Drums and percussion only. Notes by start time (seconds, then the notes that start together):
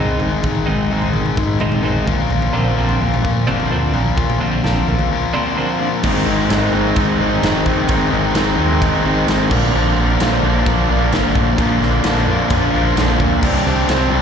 0.20 floor tom
0.43 kick, floor tom
0.55 floor tom, mid tom
1.02 floor tom
1.14 floor tom
1.26 mid tom
1.37 kick, floor tom
1.60 mid tom
1.72 floor tom, mid tom
2.07 kick, floor tom
2.31 floor tom
2.42 floor tom, mid tom
2.89 floor tom
3.02 floor tom
3.14 mid tom
3.25 kick, floor tom
3.49 mid tom
3.60 floor tom, mid tom
3.94 floor tom
4.18 kick, floor tom
4.30 floor tom, mid tom
4.64 snare, floor tom
4.76 floor tom
4.88 floor tom
4.99 mid tom
6.03 kick, crash
6.50 snare, ride bell
6.96 kick, ride bell
7.43 snare, ride bell
7.66 kick
7.89 kick, ride bell
8.35 snare, ride bell
8.82 kick, ride bell
9.28 snare, ride bell
9.51 kick, crash
10.20 snare, ride bell
10.66 kick, ride bell
11.12 snare, ride bell
11.35 kick
11.58 kick, ride bell
11.82 snare
12.04 snare, ride bell
12.50 kick, ride bell
12.97 snare, ride bell
13.20 kick
13.43 kick, crash
13.67 snare
13.89 snare, ride bell